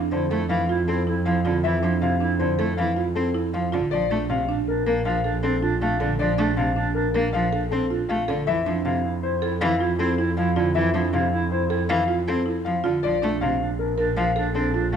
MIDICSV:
0, 0, Header, 1, 6, 480
1, 0, Start_track
1, 0, Key_signature, -1, "major"
1, 0, Tempo, 379747
1, 2068, Time_signature, 6, 2, 24, 8
1, 18916, End_track
2, 0, Start_track
2, 0, Title_t, "Grand piano"
2, 0, Program_c, 0, 0
2, 149, Note_on_c, 0, 72, 58
2, 460, Note_off_c, 0, 72, 0
2, 622, Note_on_c, 0, 77, 81
2, 938, Note_off_c, 0, 77, 0
2, 1110, Note_on_c, 0, 69, 69
2, 1420, Note_off_c, 0, 69, 0
2, 1584, Note_on_c, 0, 77, 72
2, 1898, Note_off_c, 0, 77, 0
2, 2068, Note_on_c, 0, 76, 89
2, 2380, Note_off_c, 0, 76, 0
2, 2547, Note_on_c, 0, 77, 73
2, 2859, Note_off_c, 0, 77, 0
2, 3023, Note_on_c, 0, 72, 64
2, 3338, Note_off_c, 0, 72, 0
2, 3500, Note_on_c, 0, 77, 76
2, 3817, Note_off_c, 0, 77, 0
2, 3984, Note_on_c, 0, 69, 68
2, 4298, Note_off_c, 0, 69, 0
2, 4466, Note_on_c, 0, 77, 71
2, 4779, Note_off_c, 0, 77, 0
2, 4942, Note_on_c, 0, 74, 89
2, 5258, Note_off_c, 0, 74, 0
2, 5430, Note_on_c, 0, 77, 77
2, 5740, Note_off_c, 0, 77, 0
2, 5915, Note_on_c, 0, 70, 65
2, 6222, Note_off_c, 0, 70, 0
2, 6388, Note_on_c, 0, 77, 85
2, 6700, Note_off_c, 0, 77, 0
2, 6865, Note_on_c, 0, 69, 63
2, 7179, Note_off_c, 0, 69, 0
2, 7357, Note_on_c, 0, 77, 69
2, 7663, Note_off_c, 0, 77, 0
2, 7827, Note_on_c, 0, 74, 84
2, 8139, Note_off_c, 0, 74, 0
2, 8303, Note_on_c, 0, 77, 77
2, 8618, Note_off_c, 0, 77, 0
2, 8779, Note_on_c, 0, 70, 68
2, 9097, Note_off_c, 0, 70, 0
2, 9262, Note_on_c, 0, 77, 83
2, 9577, Note_off_c, 0, 77, 0
2, 9745, Note_on_c, 0, 69, 67
2, 10058, Note_off_c, 0, 69, 0
2, 10223, Note_on_c, 0, 77, 75
2, 10538, Note_off_c, 0, 77, 0
2, 10706, Note_on_c, 0, 76, 96
2, 11019, Note_off_c, 0, 76, 0
2, 11187, Note_on_c, 0, 77, 76
2, 11499, Note_off_c, 0, 77, 0
2, 11667, Note_on_c, 0, 72, 67
2, 11979, Note_off_c, 0, 72, 0
2, 12144, Note_on_c, 0, 77, 89
2, 12458, Note_off_c, 0, 77, 0
2, 12623, Note_on_c, 0, 69, 71
2, 12938, Note_off_c, 0, 69, 0
2, 13109, Note_on_c, 0, 77, 72
2, 13420, Note_off_c, 0, 77, 0
2, 13587, Note_on_c, 0, 76, 86
2, 13899, Note_off_c, 0, 76, 0
2, 14072, Note_on_c, 0, 77, 75
2, 14381, Note_off_c, 0, 77, 0
2, 14555, Note_on_c, 0, 72, 61
2, 14862, Note_off_c, 0, 72, 0
2, 15031, Note_on_c, 0, 77, 94
2, 15341, Note_off_c, 0, 77, 0
2, 15519, Note_on_c, 0, 69, 68
2, 15824, Note_off_c, 0, 69, 0
2, 15986, Note_on_c, 0, 77, 72
2, 16299, Note_off_c, 0, 77, 0
2, 16469, Note_on_c, 0, 74, 92
2, 16780, Note_off_c, 0, 74, 0
2, 16948, Note_on_c, 0, 77, 79
2, 17260, Note_off_c, 0, 77, 0
2, 17430, Note_on_c, 0, 70, 65
2, 17740, Note_off_c, 0, 70, 0
2, 17909, Note_on_c, 0, 77, 85
2, 18220, Note_off_c, 0, 77, 0
2, 18391, Note_on_c, 0, 69, 68
2, 18701, Note_off_c, 0, 69, 0
2, 18870, Note_on_c, 0, 77, 67
2, 18916, Note_off_c, 0, 77, 0
2, 18916, End_track
3, 0, Start_track
3, 0, Title_t, "Marimba"
3, 0, Program_c, 1, 12
3, 0, Note_on_c, 1, 62, 71
3, 222, Note_off_c, 1, 62, 0
3, 393, Note_on_c, 1, 69, 77
3, 701, Note_off_c, 1, 69, 0
3, 876, Note_on_c, 1, 65, 68
3, 1182, Note_off_c, 1, 65, 0
3, 1352, Note_on_c, 1, 64, 61
3, 1661, Note_off_c, 1, 64, 0
3, 1830, Note_on_c, 1, 65, 70
3, 2140, Note_off_c, 1, 65, 0
3, 2311, Note_on_c, 1, 62, 68
3, 2621, Note_off_c, 1, 62, 0
3, 2790, Note_on_c, 1, 62, 66
3, 3100, Note_off_c, 1, 62, 0
3, 3271, Note_on_c, 1, 69, 80
3, 3581, Note_off_c, 1, 69, 0
3, 3748, Note_on_c, 1, 65, 64
3, 4060, Note_off_c, 1, 65, 0
3, 4228, Note_on_c, 1, 64, 65
3, 4540, Note_off_c, 1, 64, 0
3, 4706, Note_on_c, 1, 65, 75
3, 5019, Note_off_c, 1, 65, 0
3, 5190, Note_on_c, 1, 62, 60
3, 5500, Note_off_c, 1, 62, 0
3, 5672, Note_on_c, 1, 62, 66
3, 5981, Note_off_c, 1, 62, 0
3, 6151, Note_on_c, 1, 70, 84
3, 6461, Note_off_c, 1, 70, 0
3, 6628, Note_on_c, 1, 69, 67
3, 6940, Note_off_c, 1, 69, 0
3, 7110, Note_on_c, 1, 65, 65
3, 7420, Note_off_c, 1, 65, 0
3, 7587, Note_on_c, 1, 69, 82
3, 7899, Note_off_c, 1, 69, 0
3, 8068, Note_on_c, 1, 62, 65
3, 8380, Note_off_c, 1, 62, 0
3, 8549, Note_on_c, 1, 62, 70
3, 8860, Note_off_c, 1, 62, 0
3, 9031, Note_on_c, 1, 70, 78
3, 9341, Note_off_c, 1, 70, 0
3, 9512, Note_on_c, 1, 69, 73
3, 9821, Note_off_c, 1, 69, 0
3, 9990, Note_on_c, 1, 65, 64
3, 10300, Note_off_c, 1, 65, 0
3, 10468, Note_on_c, 1, 69, 84
3, 10780, Note_off_c, 1, 69, 0
3, 10952, Note_on_c, 1, 62, 69
3, 11261, Note_off_c, 1, 62, 0
3, 11908, Note_on_c, 1, 69, 83
3, 12219, Note_off_c, 1, 69, 0
3, 12392, Note_on_c, 1, 65, 66
3, 12701, Note_off_c, 1, 65, 0
3, 12873, Note_on_c, 1, 64, 68
3, 13181, Note_off_c, 1, 64, 0
3, 13353, Note_on_c, 1, 65, 78
3, 13661, Note_off_c, 1, 65, 0
3, 13832, Note_on_c, 1, 62, 68
3, 14141, Note_off_c, 1, 62, 0
3, 14791, Note_on_c, 1, 69, 87
3, 15101, Note_off_c, 1, 69, 0
3, 15269, Note_on_c, 1, 65, 72
3, 15580, Note_off_c, 1, 65, 0
3, 15747, Note_on_c, 1, 64, 66
3, 16059, Note_off_c, 1, 64, 0
3, 16227, Note_on_c, 1, 65, 80
3, 16539, Note_off_c, 1, 65, 0
3, 16712, Note_on_c, 1, 62, 70
3, 17021, Note_off_c, 1, 62, 0
3, 17667, Note_on_c, 1, 70, 83
3, 17979, Note_off_c, 1, 70, 0
3, 18151, Note_on_c, 1, 69, 70
3, 18461, Note_off_c, 1, 69, 0
3, 18636, Note_on_c, 1, 65, 67
3, 18916, Note_off_c, 1, 65, 0
3, 18916, End_track
4, 0, Start_track
4, 0, Title_t, "Clarinet"
4, 0, Program_c, 2, 71
4, 156, Note_on_c, 2, 64, 57
4, 321, Note_off_c, 2, 64, 0
4, 388, Note_on_c, 2, 64, 58
4, 556, Note_off_c, 2, 64, 0
4, 623, Note_on_c, 2, 64, 62
4, 792, Note_off_c, 2, 64, 0
4, 864, Note_on_c, 2, 64, 75
4, 1033, Note_off_c, 2, 64, 0
4, 1120, Note_on_c, 2, 64, 70
4, 1284, Note_off_c, 2, 64, 0
4, 1350, Note_on_c, 2, 64, 74
4, 1517, Note_off_c, 2, 64, 0
4, 1593, Note_on_c, 2, 64, 74
4, 1759, Note_off_c, 2, 64, 0
4, 1828, Note_on_c, 2, 64, 68
4, 1996, Note_off_c, 2, 64, 0
4, 2075, Note_on_c, 2, 64, 75
4, 2240, Note_off_c, 2, 64, 0
4, 2322, Note_on_c, 2, 64, 71
4, 2485, Note_off_c, 2, 64, 0
4, 2556, Note_on_c, 2, 64, 66
4, 2721, Note_off_c, 2, 64, 0
4, 2795, Note_on_c, 2, 64, 72
4, 2960, Note_off_c, 2, 64, 0
4, 3031, Note_on_c, 2, 64, 66
4, 3198, Note_off_c, 2, 64, 0
4, 3267, Note_on_c, 2, 64, 63
4, 3435, Note_off_c, 2, 64, 0
4, 3511, Note_on_c, 2, 64, 54
4, 3677, Note_off_c, 2, 64, 0
4, 3743, Note_on_c, 2, 64, 50
4, 3912, Note_off_c, 2, 64, 0
4, 3987, Note_on_c, 2, 64, 44
4, 4156, Note_off_c, 2, 64, 0
4, 4228, Note_on_c, 2, 64, 44
4, 4396, Note_off_c, 2, 64, 0
4, 4466, Note_on_c, 2, 64, 36
4, 4635, Note_off_c, 2, 64, 0
4, 4943, Note_on_c, 2, 62, 34
4, 5112, Note_off_c, 2, 62, 0
4, 5188, Note_on_c, 2, 62, 41
4, 5356, Note_off_c, 2, 62, 0
4, 5424, Note_on_c, 2, 62, 43
4, 5594, Note_off_c, 2, 62, 0
4, 5663, Note_on_c, 2, 62, 52
4, 5832, Note_off_c, 2, 62, 0
4, 5903, Note_on_c, 2, 62, 61
4, 6073, Note_off_c, 2, 62, 0
4, 6133, Note_on_c, 2, 62, 66
4, 6306, Note_off_c, 2, 62, 0
4, 6375, Note_on_c, 2, 62, 67
4, 6547, Note_off_c, 2, 62, 0
4, 6609, Note_on_c, 2, 62, 67
4, 6784, Note_off_c, 2, 62, 0
4, 6849, Note_on_c, 2, 62, 73
4, 7024, Note_off_c, 2, 62, 0
4, 7097, Note_on_c, 2, 62, 78
4, 7269, Note_off_c, 2, 62, 0
4, 7351, Note_on_c, 2, 62, 76
4, 7518, Note_off_c, 2, 62, 0
4, 7579, Note_on_c, 2, 62, 68
4, 7750, Note_off_c, 2, 62, 0
4, 7828, Note_on_c, 2, 62, 73
4, 7996, Note_off_c, 2, 62, 0
4, 8063, Note_on_c, 2, 62, 77
4, 8232, Note_off_c, 2, 62, 0
4, 8300, Note_on_c, 2, 62, 73
4, 8471, Note_off_c, 2, 62, 0
4, 8544, Note_on_c, 2, 62, 78
4, 8714, Note_off_c, 2, 62, 0
4, 8781, Note_on_c, 2, 62, 67
4, 8951, Note_off_c, 2, 62, 0
4, 9030, Note_on_c, 2, 62, 60
4, 9197, Note_off_c, 2, 62, 0
4, 9270, Note_on_c, 2, 62, 58
4, 9437, Note_off_c, 2, 62, 0
4, 9514, Note_on_c, 2, 62, 58
4, 9680, Note_off_c, 2, 62, 0
4, 9756, Note_on_c, 2, 62, 47
4, 9921, Note_off_c, 2, 62, 0
4, 9999, Note_on_c, 2, 62, 46
4, 10163, Note_off_c, 2, 62, 0
4, 10229, Note_on_c, 2, 62, 39
4, 10396, Note_off_c, 2, 62, 0
4, 10710, Note_on_c, 2, 64, 39
4, 10877, Note_off_c, 2, 64, 0
4, 10951, Note_on_c, 2, 64, 46
4, 11118, Note_off_c, 2, 64, 0
4, 11180, Note_on_c, 2, 64, 48
4, 11351, Note_off_c, 2, 64, 0
4, 11414, Note_on_c, 2, 64, 55
4, 11587, Note_off_c, 2, 64, 0
4, 11651, Note_on_c, 2, 64, 65
4, 11825, Note_off_c, 2, 64, 0
4, 11902, Note_on_c, 2, 64, 65
4, 12072, Note_off_c, 2, 64, 0
4, 12141, Note_on_c, 2, 64, 70
4, 12311, Note_off_c, 2, 64, 0
4, 12383, Note_on_c, 2, 64, 78
4, 12553, Note_off_c, 2, 64, 0
4, 12624, Note_on_c, 2, 64, 86
4, 12793, Note_off_c, 2, 64, 0
4, 12870, Note_on_c, 2, 64, 81
4, 13037, Note_off_c, 2, 64, 0
4, 13111, Note_on_c, 2, 64, 85
4, 13278, Note_off_c, 2, 64, 0
4, 13349, Note_on_c, 2, 64, 75
4, 13517, Note_off_c, 2, 64, 0
4, 13596, Note_on_c, 2, 64, 81
4, 13761, Note_off_c, 2, 64, 0
4, 13837, Note_on_c, 2, 64, 81
4, 14001, Note_off_c, 2, 64, 0
4, 14074, Note_on_c, 2, 64, 76
4, 14239, Note_off_c, 2, 64, 0
4, 14308, Note_on_c, 2, 64, 83
4, 14476, Note_off_c, 2, 64, 0
4, 14553, Note_on_c, 2, 64, 72
4, 14719, Note_off_c, 2, 64, 0
4, 14789, Note_on_c, 2, 64, 71
4, 14956, Note_off_c, 2, 64, 0
4, 15034, Note_on_c, 2, 64, 65
4, 15200, Note_off_c, 2, 64, 0
4, 15282, Note_on_c, 2, 64, 59
4, 15445, Note_off_c, 2, 64, 0
4, 15510, Note_on_c, 2, 64, 53
4, 15677, Note_off_c, 2, 64, 0
4, 15749, Note_on_c, 2, 64, 46
4, 15917, Note_off_c, 2, 64, 0
4, 15996, Note_on_c, 2, 64, 40
4, 16161, Note_off_c, 2, 64, 0
4, 16464, Note_on_c, 2, 62, 38
4, 16633, Note_off_c, 2, 62, 0
4, 16704, Note_on_c, 2, 62, 42
4, 16873, Note_off_c, 2, 62, 0
4, 16951, Note_on_c, 2, 62, 49
4, 17118, Note_off_c, 2, 62, 0
4, 17193, Note_on_c, 2, 62, 52
4, 17359, Note_off_c, 2, 62, 0
4, 17426, Note_on_c, 2, 62, 60
4, 17594, Note_off_c, 2, 62, 0
4, 17671, Note_on_c, 2, 62, 69
4, 17838, Note_off_c, 2, 62, 0
4, 17913, Note_on_c, 2, 62, 67
4, 18079, Note_off_c, 2, 62, 0
4, 18159, Note_on_c, 2, 62, 80
4, 18323, Note_off_c, 2, 62, 0
4, 18395, Note_on_c, 2, 62, 79
4, 18560, Note_off_c, 2, 62, 0
4, 18620, Note_on_c, 2, 62, 77
4, 18791, Note_off_c, 2, 62, 0
4, 18865, Note_on_c, 2, 62, 76
4, 18916, Note_off_c, 2, 62, 0
4, 18916, End_track
5, 0, Start_track
5, 0, Title_t, "Cello"
5, 0, Program_c, 3, 42
5, 150, Note_on_c, 3, 50, 65
5, 329, Note_off_c, 3, 50, 0
5, 387, Note_on_c, 3, 57, 70
5, 567, Note_off_c, 3, 57, 0
5, 626, Note_on_c, 3, 52, 84
5, 807, Note_off_c, 3, 52, 0
5, 1110, Note_on_c, 3, 60, 65
5, 1289, Note_off_c, 3, 60, 0
5, 1593, Note_on_c, 3, 53, 70
5, 1771, Note_off_c, 3, 53, 0
5, 1836, Note_on_c, 3, 50, 64
5, 2013, Note_off_c, 3, 50, 0
5, 2074, Note_on_c, 3, 52, 77
5, 2251, Note_off_c, 3, 52, 0
5, 2314, Note_on_c, 3, 53, 61
5, 2492, Note_off_c, 3, 53, 0
5, 2552, Note_on_c, 3, 48, 65
5, 2730, Note_off_c, 3, 48, 0
5, 3034, Note_on_c, 3, 50, 64
5, 3211, Note_off_c, 3, 50, 0
5, 3268, Note_on_c, 3, 57, 71
5, 3448, Note_off_c, 3, 57, 0
5, 3514, Note_on_c, 3, 52, 84
5, 3692, Note_off_c, 3, 52, 0
5, 3993, Note_on_c, 3, 60, 67
5, 4171, Note_off_c, 3, 60, 0
5, 4474, Note_on_c, 3, 53, 72
5, 4652, Note_off_c, 3, 53, 0
5, 4718, Note_on_c, 3, 50, 65
5, 4894, Note_off_c, 3, 50, 0
5, 4958, Note_on_c, 3, 53, 82
5, 5134, Note_off_c, 3, 53, 0
5, 5195, Note_on_c, 3, 57, 63
5, 5372, Note_off_c, 3, 57, 0
5, 5430, Note_on_c, 3, 48, 70
5, 5609, Note_off_c, 3, 48, 0
5, 6151, Note_on_c, 3, 58, 68
5, 6330, Note_off_c, 3, 58, 0
5, 6385, Note_on_c, 3, 53, 85
5, 6566, Note_off_c, 3, 53, 0
5, 6862, Note_on_c, 3, 60, 66
5, 7044, Note_off_c, 3, 60, 0
5, 7350, Note_on_c, 3, 57, 65
5, 7529, Note_off_c, 3, 57, 0
5, 7587, Note_on_c, 3, 50, 69
5, 7767, Note_off_c, 3, 50, 0
5, 7827, Note_on_c, 3, 53, 89
5, 8007, Note_off_c, 3, 53, 0
5, 8068, Note_on_c, 3, 57, 67
5, 8248, Note_off_c, 3, 57, 0
5, 8304, Note_on_c, 3, 48, 74
5, 8485, Note_off_c, 3, 48, 0
5, 9033, Note_on_c, 3, 58, 75
5, 9211, Note_off_c, 3, 58, 0
5, 9273, Note_on_c, 3, 53, 90
5, 9451, Note_off_c, 3, 53, 0
5, 9754, Note_on_c, 3, 60, 72
5, 9932, Note_off_c, 3, 60, 0
5, 10232, Note_on_c, 3, 57, 72
5, 10411, Note_off_c, 3, 57, 0
5, 10472, Note_on_c, 3, 50, 74
5, 10650, Note_off_c, 3, 50, 0
5, 10705, Note_on_c, 3, 52, 82
5, 10886, Note_off_c, 3, 52, 0
5, 10946, Note_on_c, 3, 53, 70
5, 11127, Note_off_c, 3, 53, 0
5, 11188, Note_on_c, 3, 48, 75
5, 11368, Note_off_c, 3, 48, 0
5, 12151, Note_on_c, 3, 52, 96
5, 12330, Note_off_c, 3, 52, 0
5, 12633, Note_on_c, 3, 60, 76
5, 12811, Note_off_c, 3, 60, 0
5, 13113, Note_on_c, 3, 53, 73
5, 13291, Note_off_c, 3, 53, 0
5, 13351, Note_on_c, 3, 50, 70
5, 13530, Note_off_c, 3, 50, 0
5, 13591, Note_on_c, 3, 52, 93
5, 13769, Note_off_c, 3, 52, 0
5, 13832, Note_on_c, 3, 53, 72
5, 14010, Note_off_c, 3, 53, 0
5, 14069, Note_on_c, 3, 48, 75
5, 14248, Note_off_c, 3, 48, 0
5, 15035, Note_on_c, 3, 52, 93
5, 15212, Note_off_c, 3, 52, 0
5, 15518, Note_on_c, 3, 60, 75
5, 15694, Note_off_c, 3, 60, 0
5, 16002, Note_on_c, 3, 53, 71
5, 16177, Note_off_c, 3, 53, 0
5, 16233, Note_on_c, 3, 50, 65
5, 16411, Note_off_c, 3, 50, 0
5, 16477, Note_on_c, 3, 53, 84
5, 16653, Note_off_c, 3, 53, 0
5, 16723, Note_on_c, 3, 57, 72
5, 16897, Note_off_c, 3, 57, 0
5, 16959, Note_on_c, 3, 48, 75
5, 17135, Note_off_c, 3, 48, 0
5, 17908, Note_on_c, 3, 53, 92
5, 18088, Note_off_c, 3, 53, 0
5, 18387, Note_on_c, 3, 60, 63
5, 18567, Note_off_c, 3, 60, 0
5, 18866, Note_on_c, 3, 57, 70
5, 18916, Note_off_c, 3, 57, 0
5, 18916, End_track
6, 0, Start_track
6, 0, Title_t, "Double bass"
6, 0, Program_c, 4, 43
6, 0, Note_on_c, 4, 41, 61
6, 4803, Note_off_c, 4, 41, 0
6, 4942, Note_on_c, 4, 34, 64
6, 10558, Note_off_c, 4, 34, 0
6, 10707, Note_on_c, 4, 41, 69
6, 16321, Note_off_c, 4, 41, 0
6, 16471, Note_on_c, 4, 34, 64
6, 18916, Note_off_c, 4, 34, 0
6, 18916, End_track
0, 0, End_of_file